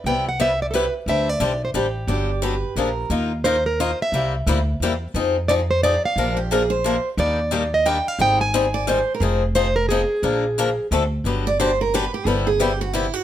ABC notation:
X:1
M:3/4
L:1/16
Q:"Swing" 1/4=177
K:G
V:1 name="Steel-string acoustic guitar"
g2 f2 e2 d3/2 A/2 B2 z2 | e2 d4 c2 G4- | G8- G2 z2 | [K:Eb] z4 c2 B2 c2 _f2- |
_f2 z8 z2 | z4 d2 c2 d2 f2- | f2 z8 z2 | d6 e2 g2 f2 |
g2 a8 z2 | z4 c2 B2 A4- | A8 z4 | [K:G] z12 |
z12 |]
V:2 name="Steel-string acoustic guitar"
z12 | z12 | d4 B4 _B4 | [K:Eb] z12 |
z12 | z12 | z2 G2 A2 c4- c z | z12 |
z6 d2 c3 B | A3 z8 z | z12 | [K:G] z2 d2 c2 _B2 =B2 G2 |
A2 _A2 G2 F2 E2 F2 |]
V:3 name="Steel-string acoustic guitar"
[C,G,B,EG]2 z2 [C,G,B,EG] z3 [C,G,B,EG] z3 | [D,G,CDG]2 z2 [D,G,CDG] z3 [D,G,CDG] z3 | [D,F,B,DG]2 z2 [D,F,B,DG] z3 [D,=F,_B,D_A] z3 | [K:Eb] [E,B,EFB]2 z2 [E,B,EFB] z3 [E,B,EFB] z3 |
[C,G,B,=EG]2 z2 [C,G,B,EG] z3 [C,G,B,EG] z3 | [F,CEA]2 z2 [F,CEA] z3 [F,CEA] z3 | [C,F,B,DB]2 z2 [C,F,B,DB] z3 [C,F,B,DB] z3 | [E,G,B,DG]2 z2 [E,G,B,DG] z3 [E,G,B,DG] z3 |
[E,G,CEA]2 z2 [E,G,CEA] z3 [E,G,CEA] z3 | [F,CEA]2 z2 [F,CEA] z3 [F,CEA] z3 | [D,F,B,DB]2 z2 [D,F,B,DB] z3 [D,=A,C^F=A] z3 | [K:G] [D,F,B,DG]2 z2 [D,F,B,DG] z3 [D,F,B,DG] z3 |
[C,G,B,EG]2 z2 [C,G,B,EG] z3 [C,G,B,EG] z3 |]
V:4 name="Upright bass" clef=bass
C,,12 | D,,4 B,,,4 A,,,4 | G,,,8 _B,,,4 | [K:Eb] E,,12 |
C,,4 D,,4 =E,,4 | F,,12 | B,,,12 | E,,12 |
A,,,12 | F,,,12 | B,,,8 D,,4 | [K:G] G,,,12 |
G,,,12 |]